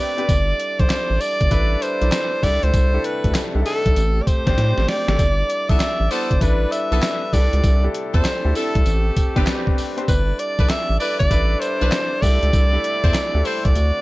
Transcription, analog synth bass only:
0.29 0.53 G1 loud
0.80 0.88 B1 loud
1.10 1.19 A1 medium
1.41 1.49 G1 loud
1.51 1.76 A1 loud
2.02 2.10 B1 medium
2.43 2.59 C2 medium
2.63 2.72 C#2 loud
2.74 2.98 C2 loud
3.24 3.33 D2 medium
3.55 3.64 C2 medium
3.86 3.94 B1 medium
3.96 4.21 A1 loud
4.47 4.55 A1 medium
4.58 4.73 A2 loud
4.78 4.86 A1 loud
5.08 5.17 G#1 loud
5.19 5.43 G1 loud
5.70 5.78 B1 loud
6.00 6.09 A1 medium
6.31 6.39 G1 medium
6.41 6.66 A1 loud
6.92 7.00 B1 loud
7.33 7.49 C2 loud
7.53 7.62 C#2 loud
7.64 7.88 C2 loud
8.14 8.23 E2 medium
8.45 8.53 D2 medium
8.75 8.84 C2 loud
8.86 9.11 A1 loud
9.36 9.45 G1 loud
10.08 10.33 G1 loud
10.59 10.67 B1 medium
10.89 10.98 A1 medium
11.20 11.29 G1 medium
11.31 11.55 A1 loud
11.82 11.90 B1 medium
12.22 12.39 C2 loud
12.43 12.51 C#2 loud
12.53 12.78 C2 loud
13.04 13.12 E2 medium
13.34 13.43 D2 medium
13.65 13.74 C2 loud
13.76 13.92 D2 loud

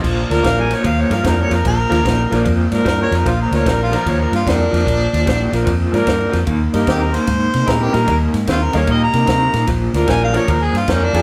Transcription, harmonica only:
0.45 0.62 F5 medium
0.60 0.75 G#5 medium
0.74 0.89 C#5 medium
0.87 1.03 F5 medium
1.01 1.15 C#5 medium
1.14 1.26 F5 medium
1.27 1.43 A#4 medium
1.41 1.53 C#5 medium
1.54 1.66 A#4 medium
1.67 2.44 A#4 loud
2.88 3.00 A#4 loud
3.02 3.16 C#5 loud
3.15 3.30 A#4 loud
3.29 3.40 F4 medium
3.42 3.54 A#4 medium
3.55 3.71 C#5 medium
3.69 3.81 A#4 medium
3.83 3.98 F4 loud
3.96 4.11 A#4 medium
4.09 4.23 C#5 medium
4.22 4.34 A#4 medium
4.35 4.50 F4 medium
4.49 5.65 D4 loud
6.90 7.04 G4 medium
7.02 7.17 A#4 medium
7.15 7.70 C5 loud
7.68 7.84 A#4 loud
7.82 7.96 G4 loud
7.95 8.16 A#4 loud
8.49 8.65 F4 loud
8.64 8.76 A#4 medium
8.76 8.89 C#5 loud
8.91 9.03 D#5 medium
9.03 9.29 A#5 medium
9.31 9.69 A#5 loud
10.09 10.22 G#5 loud
10.24 10.35 F5 loud
10.35 10.51 C#5 loud
10.50 10.64 A#4 loud
10.62 10.79 G#4 loud
10.77 10.91 F4 medium
10.89 11.05 C#4 loud
11.04 11.22 D4 loud

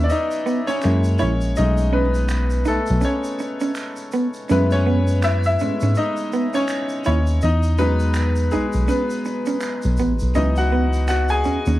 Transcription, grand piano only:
0.00 0.84 E3 medium
0.00 0.84 F#3 soft
0.00 0.84 B3 medium
0.00 0.70 C#4 medium
0.00 0.12 D#4 medium
0.00 0.84 E4 medium
0.00 0.84 B4 medium
0.00 0.67 C#5 loud
0.00 0.84 D5 medium
0.00 0.84 E5 loud
0.10 0.65 D#4 medium
0.10 0.70 D#5 loud
0.67 1.17 C#4 medium
0.67 1.18 C#5 medium
0.83 1.52 G#3 medium
0.83 1.53 A#3 medium
0.83 1.53 E4 medium
1.19 1.29 C#4 medium
1.19 1.27 C#5 medium
1.57 2.08 G#3 medium
1.57 2.08 A3 soft
1.57 2.08 C#4 medium
1.57 1.91 D#4 medium
1.57 1.90 D#5 loud
1.93 2.63 B3 medium
1.93 2.68 B4 medium
2.68 3.01 A3 medium
2.68 3.01 A4 medium
3.05 3.73 C#4 medium
3.05 3.73 C#5 medium
4.50 5.59 G#3 medium
4.50 5.60 A3 medium
4.50 4.70 B3 medium
4.50 5.23 E4 medium
4.50 4.72 B4 medium
4.72 5.19 C#4 medium
4.72 5.24 C#5 loud
5.24 5.43 E4 medium
5.24 5.44 E5 loud
5.46 5.60 E4 medium
5.46 5.98 E5 loud
5.61 5.93 G#3 soft
5.61 5.93 A3 soft
5.61 5.93 B3 soft
5.61 5.93 E4 medium
5.97 6.51 D#4 medium
5.97 6.56 D#5 loud
6.55 7.03 C#4 medium
6.55 7.02 C#5 loud
7.06 7.40 C#4 medium
7.06 7.43 C#5 medium
7.43 7.77 D#4 medium
7.43 7.76 D#5 medium
7.79 10.30 F#3 medium
7.79 8.52 G#3 soft
7.79 8.48 B3 medium
7.79 10.31 D#4 medium
7.79 8.54 B4 loud
8.51 8.87 G#3 medium
8.51 8.89 G#4 medium
8.89 9.58 B3 medium
8.89 9.57 B4 medium
10.35 11.40 E3 medium
10.35 11.40 F#3 medium
10.35 11.41 B3 medium
10.35 10.55 D#4 medium
10.35 10.57 D#5 medium
10.57 11.05 F#4 medium
10.57 11.07 F#5 loud
11.09 11.28 F#4 medium
11.09 11.30 F#5 medium
11.30 11.78 G#4 medium
11.30 11.79 G#5 loud

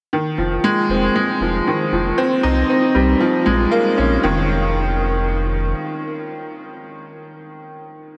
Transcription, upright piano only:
0.13 0.38 D#3 medium
0.38 0.63 F3 medium
0.64 0.89 G#3 medium
0.90 1.15 C4 medium
1.16 1.40 G#3 medium
1.42 1.66 F3 medium
1.67 1.92 D#3 medium
1.93 2.17 F3 medium
2.18 2.43 C4 medium
2.43 2.68 D#4 medium
2.70 2.94 C4 medium
2.95 3.20 G3 medium
3.20 3.45 F3 medium
3.46 3.71 G#3 medium
3.71 3.96 A#3 loud
3.98 4.22 C#4 medium
4.23 4.47 D#3 medium

